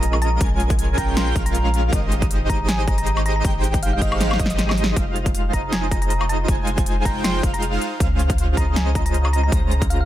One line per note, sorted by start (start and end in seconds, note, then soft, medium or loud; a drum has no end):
0.00 0.39 A#1 loud
0.00 0.39 G#3 medium
0.00 0.39 C#4 medium
0.00 0.39 F4 medium
0.00 0.39 A#4 medium
0.00 0.39 D#5 medium
0.00 0.39 D#5 loud
0.00 0.09 A#5 medium
0.00 closed hi-hat medium
0.13 high woodblock medium
0.22 0.33 A#5 loud
0.22 closed hi-hat medium
0.41 0.96 A#1 loud
0.41 0.96 G#3 loud
0.41 0.96 C#4 medium
0.41 0.96 F4 medium
0.41 0.96 A#4 loud
0.41 0.96 G#5 loud
0.41 kick loud
0.41 closed hi-hat medium
0.60 closed hi-hat medium
0.70 kick loud
0.70 closed hi-hat medium
0.79 closed hi-hat medium
0.98 1.34 A#1 medium
0.98 1.34 G#3 medium
0.98 1.34 C#4 medium
0.98 1.34 F4 medium
0.98 1.34 G5 medium
0.98 1.10 A#5 medium
0.98 kick medium
0.98 closed hi-hat medium
1.17 1.28 C6 medium
1.17 snare loud
1.17 closed hi-hat medium
1.36 1.91 A#1 loud
1.36 1.91 G#3 medium
1.36 1.91 C#4 medium
1.36 1.91 F4 medium
1.36 1.91 F5 medium
1.36 kick loud
1.36 closed hi-hat medium
1.46 1.73 A#5 medium
1.46 closed hi-hat medium
1.55 closed hi-hat medium
1.74 closed hi-hat medium
1.93 2.48 G#1 loud
1.93 2.48 G#3 medium
1.93 2.48 D#4 medium
1.93 2.48 G4 medium
1.93 2.48 C5 medium
1.93 2.48 D#5 medium
1.93 kick loud
1.93 closed hi-hat medium
2.12 closed hi-hat medium
2.22 kick loud
2.22 closed hi-hat medium
2.31 closed hi-hat medium
2.49 3.43 G#1 medium
2.49 3.43 G#3 medium
2.49 3.43 D#4 medium
2.49 3.43 G4 medium
2.49 3.43 C5 medium
2.49 3.42 D#5 loud
2.49 3.43 D#5 loud
2.49 2.61 A#5 medium
2.49 kick medium
2.49 closed hi-hat medium
2.69 2.80 G#5 medium
2.69 snare loud
2.69 closed hi-hat medium
2.88 2.96 A#5 medium
2.88 kick loud
2.88 closed hi-hat medium
2.98 3.04 A#5 medium
2.98 closed hi-hat medium
3.07 3.13 A#5 medium
3.07 closed hi-hat medium
3.17 high woodblock medium
3.26 3.32 A#5 medium
3.26 closed hi-hat medium
3.36 3.41 A#5 medium
3.45 4.00 G#1 loud
3.45 4.00 G#3 loud
3.45 4.00 D#4 medium
3.45 4.00 G4 medium
3.45 4.00 C5 medium
3.45 3.99 G5 loud
3.45 4.00 G5 loud
3.45 kick loud
3.45 closed hi-hat medium
3.64 closed hi-hat medium
3.74 kick loud
3.74 closed hi-hat medium
3.83 3.89 F5 medium
3.83 closed hi-hat medium
3.93 3.99 F5 medium
4.01 4.38 G#1 loud
4.01 4.38 G#3 medium
4.01 4.38 D#4 medium
4.01 4.38 G4 medium
4.01 4.38 C5 medium
4.01 4.13 D#5 medium
4.01 4.37 F5 medium
4.01 4.38 F5 medium
4.01 kick medium
4.01 closed hi-hat medium
4.12 high woodblock medium
4.21 snare medium
4.21 closed hi-hat medium
4.31 snare medium
4.31 high woodblock medium
4.39 4.95 G#1 loud
4.39 4.95 G#3 loud
4.39 4.95 D#4 medium
4.39 4.95 C5 medium
4.39 4.94 D#5 loud
4.39 4.95 D#5 loud
4.39 4.46 D#5 medium
4.39 kick medium
4.39 closed hi-hat medium
4.46 snare medium
4.50 4.56 D#5 medium
4.50 closed hi-hat medium
4.59 snare medium
4.59 closed hi-hat medium
4.69 snare loud
4.69 high woodblock medium
4.78 closed hi-hat medium
4.84 snare loud
4.96 5.52 F1 loud
4.96 5.51 G#3 medium
4.96 5.51 D#4 medium
4.96 5.51 F4 medium
4.96 5.51 C5 medium
4.96 5.51 F5 medium
4.96 kick loud
4.96 closed hi-hat medium
5.16 closed hi-hat medium
5.26 kick loud
5.26 closed hi-hat medium
5.35 closed hi-hat medium
5.53 6.47 F1 loud
5.53 6.46 G#3 medium
5.53 6.46 D#4 medium
5.53 6.46 F4 medium
5.53 6.46 C5 medium
5.53 6.46 D#5 loud
5.53 5.65 A#5 loud
5.53 kick medium
5.53 closed hi-hat medium
5.72 5.84 G#5 medium
5.72 snare loud
5.72 closed hi-hat medium
5.91 6.00 A#5 loud
5.91 kick loud
5.91 closed hi-hat medium
6.02 6.07 A#5 medium
6.02 closed hi-hat medium
6.10 6.17 A#5 medium
6.10 closed hi-hat medium
6.21 high woodblock medium
6.29 6.41 A#5 medium
6.29 closed hi-hat medium
6.48 7.04 F1 loud
6.48 7.03 G#3 loud
6.48 7.03 D#4 medium
6.48 7.03 F4 medium
6.48 7.03 C5 medium
6.48 7.03 G#5 loud
6.48 kick loud
6.48 closed hi-hat medium
6.67 closed hi-hat medium
6.78 kick loud
6.78 closed hi-hat medium
6.86 closed hi-hat medium
7.05 7.42 F1 medium
7.05 7.41 G#3 medium
7.05 7.41 D#4 medium
7.05 7.41 F4 medium
7.05 7.41 C5 medium
7.05 7.41 G5 medium
7.05 7.17 A#5 medium
7.05 kick medium
7.05 closed hi-hat medium
7.24 7.36 C6 medium
7.24 snare loud
7.24 closed hi-hat medium
7.43 7.79 F1 loud
7.43 7.80 F5 medium
7.43 kick loud
7.43 closed hi-hat medium
7.54 7.81 A#5 medium
7.54 closed hi-hat medium
7.62 closed hi-hat medium
7.82 closed hi-hat medium
8.00 8.55 C#2 loud
8.00 8.55 G#3 medium
8.00 8.55 C#4 medium
8.00 8.55 F4 medium
8.00 8.55 C5 medium
8.00 8.55 F5 medium
8.00 kick loud
8.00 closed hi-hat medium
8.19 closed hi-hat medium
8.30 kick loud
8.30 closed hi-hat medium
8.38 closed hi-hat medium
8.57 9.50 C#2 loud
8.57 9.50 G#3 medium
8.57 9.50 C#4 medium
8.57 9.50 F4 medium
8.57 9.50 C5 medium
8.57 9.50 D#5 loud
8.57 9.50 D#5 medium
8.57 8.69 A#5 medium
8.57 kick medium
8.57 closed hi-hat medium
8.76 8.88 G#5 medium
8.76 snare loud
8.76 closed hi-hat medium
8.95 9.04 A#5 loud
8.95 kick loud
8.95 closed hi-hat medium
9.06 9.11 A#5 medium
9.06 closed hi-hat medium
9.14 9.21 A#5 medium
9.14 closed hi-hat medium
9.25 high woodblock medium
9.33 9.40 A#5 medium
9.33 closed hi-hat medium
9.44 9.49 A#5 medium
9.52 10.05 C#2 loud
9.52 10.05 G#3 loud
9.52 10.05 C#4 medium
9.52 10.05 F4 medium
9.52 10.05 C5 medium
9.52 10.05 A#5 loud
9.52 kick loud
9.52 closed hi-hat medium
9.71 closed hi-hat medium
9.82 kick loud
9.82 closed hi-hat medium
9.90 9.97 F5 medium
9.90 closed hi-hat medium
10.01 10.05 F5 medium